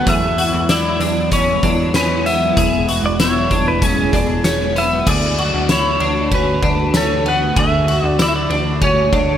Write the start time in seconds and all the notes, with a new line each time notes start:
Already playing: F#3
0.07 E2 G#3 B3 E4 G#4 E5, kick, closed hi-hat
0.38 F#4, closed hi-hat
0.53 E2
0.69 E4 D5, snare, closed hi-hat, tambourine
1.00 E2 D4, closed hi-hat
1.32 C#4 C#5, kick, closed hi-hat
1.63 E2 D4, kick, closed hi-hat
1.94 C#4 B4, snare, closed hi-hat, tambourine
2.26 B3 E5, closed hi-hat
2.57 E1 G#4, kick, closed hi-hat
2.89 F#4, closed hi-hat
3.03 E1 D5
3.20 E4 C#5, snare, closed hi-hat, tambourine
3.51 E1 D4, kick, closed hi-hat
3.68 B4
3.82 C#4 G#4, kick, closed hi-hat
4.13 E1 D4, kick, closed hi-hat
4.44 C#4, snare, closed hi-hat, tambourine
4.76 B3 E5, closed hi-hat
5.06 D2 D3 A3 F#4 G#4 D5, kick, crash
5.38 F#4, ride
5.54 D2
5.69 E4 C#5, snare, ride, tambourine
6.00 D2 D4, ride
6.32 C#4 B4, kick, ride
6.62 D2 D4, kick, ride
6.94 C#4 A4, snare, ride, tambourine
7.26 B3 F#5, ride
7.56 D2 G#4 E5, kick, ride
7.88 F#4, ride
8.03 D2 D5
8.19 E4 D5, snare, ride, tambourine
8.28 E5
8.36 D5
8.50 D2 D4, ride
8.82 C#4 C#5, kick, ride
9.13 D2 D4, kick, ride